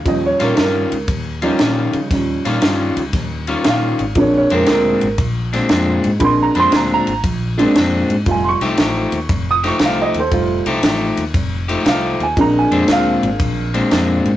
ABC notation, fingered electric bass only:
X:1
M:4/4
L:1/8
Q:"Swing" 1/4=117
K:Fdor
V:1 name="Fingered electric bass" clef=bass
E,, B,, G,, _D,, E,,2 B,, _D, | E,, B,, G,, _D,, E,,2 B,, A,,, | B,,, F,, D,, A,,, B,,,2 F,, A,, | B,,, F,, D,, A,,, B,,,2 F,, A,, |
F,,, C,, =A,,, E,, F,,,2 C,, E,, | F,,, C,, =A,,, E,, F,,,2 C,, E,, | B,,, F,, D,, A,,, B,,,2 F,, A,, |]